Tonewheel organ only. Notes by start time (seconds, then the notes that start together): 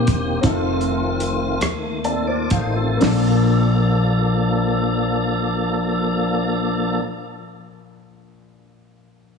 Already playing: D#3 A#3 C4 G4
0.43 D#3 A3 C4 E4
0.50 F4
2.05 C4 A4
2.27 F4 D5
2.51 D#4 C5
2.75 C4 A4
3.01 F3 A#3 D4 A4